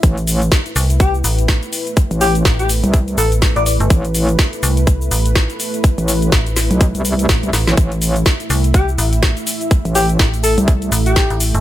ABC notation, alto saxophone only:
X:1
M:4/4
L:1/16
Q:"Swing 16ths" 1/4=124
K:Am
V:1 name="Alto saxophone"
z8 G z6 z | z2 G z2 G z4 A z2 d d z | z16 | z16 |
z8 G z6 z | z2 G z3 A z4 G3 z2 |]